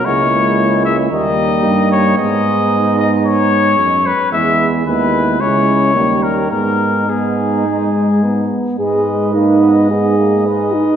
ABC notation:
X:1
M:4/4
L:1/8
Q:1/4=110
K:G#m
V:1 name="Trumpet"
c3 e d3 c | d3 d c3 B | e z B2 c3 A | A2 G4- G z |
d2 d4 d2 |]
V:2 name="Flugelhorn"
E4 D4 | D6- D z | E2 E2 E2 D2 | D2 D4- D z |
B4 d2 B2 |]
V:3 name="French horn"
A,4 A,4 | B,6- B, z | B,2 B,2 C2 A,2 | B,2 B,2 G,2 B,2 |
G2 D2 G3 D |]
V:4 name="Trombone" clef=bass
G,4 =G,4 | G,6- G, z | G,2 G,2 G,2 =G,2 | G,2 G,4- G, z |
G,2 A, B, B, A, G,2 |]
V:5 name="Tuba" clef=bass
C,,4 D,,2 =G,,2 | G,,6 F,, z | E,,2 D,,2 C,,2 D,,2 | G,,6- G,, z |
G,,8 |]